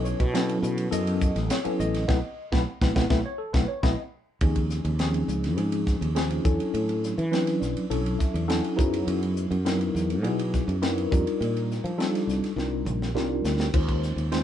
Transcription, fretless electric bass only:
0.00 0.13 B1 medium
0.20 0.57 B2 loud
0.63 0.88 B2 medium
0.92 1.30 F#2 medium
1.36 1.48 A1 medium
1.66 muted fretless electric bass stroke soft
1.80 2.05 A1 medium
2.09 2.20 B1 loud
2.53 2.63 B1 loud
2.81 2.92 B1 medium
2.96 3.07 B1 medium
3.10 3.21 B1 loud
3.54 3.65 B1 medium
3.83 3.94 B1 loud
4.41 4.79 D#2 medium
4.85 5.22 D#2 loud
5.28 5.57 C#2 medium
5.57 5.95 G#2 medium
6.01 6.39 D#2 medium
6.45 6.58 E2 medium
6.74 7.12 A2 medium
7.18 7.56 E3 medium
7.62 7.74 B1 medium
7.76 muted fretless electric bass stroke soft
7.90 8.16 B1 medium
8.34 8.59 E2 medium
8.79 9.04 F#2 medium
9.07 9.45 F#2 medium
9.51 9.89 F#2 medium
9.95 10.24 E2 medium
10.24 10.62 B2 medium
10.68 11.05 F#2 medium
11.12 11.24 F2 medium
11.41 11.78 A#2 medium
11.84 12.22 F3 medium
12.27 12.40 C2 medium
12.42 muted fretless electric bass stroke soft
12.56 12.82 C2 medium
12.85 13.12 A#1 medium
13.15 13.41 C2 medium
13.44 13.71 D2 medium
13.74 14.11 D#2 medium
14.16 14.43 D#2 medium

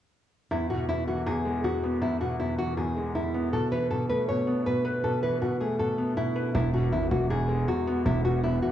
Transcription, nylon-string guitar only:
0.51 0.67 E4 medium
0.70 0.86 F#4 medium
0.89 1.05 E4 medium
1.08 1.24 F#4 medium
1.26 1.62 G#4 loud
1.64 2.00 F#4 medium
2.02 2.18 E4 medium
2.21 2.37 F#4 medium
2.40 2.56 E4 medium
2.59 2.75 F#4 medium
2.77 3.13 G#4 medium
3.15 3.51 E4 medium
3.53 3.69 A4 medium
3.72 3.88 B4 medium
3.91 4.07 A4 medium
4.10 4.26 B4 medium
4.29 4.64 C#5 medium
4.66 5.02 B4 medium
5.04 5.20 A4 medium
5.23 5.39 B4 medium
5.42 5.58 F#4 medium
5.60 5.77 G#4 medium
5.79 6.15 A4 medium
6.17 6.53 E4 medium
6.55 6.71 E4 medium
6.74 6.90 F#4 medium
6.93 7.09 E4 medium
7.11 7.28 F#4 medium
7.30 7.66 G#4 loud
7.68 8.04 F#4 medium
8.06 8.22 E4 medium
8.25 8.41 F#4 medium
8.44 8.60 E4 medium
8.62 8.72 F#4 medium

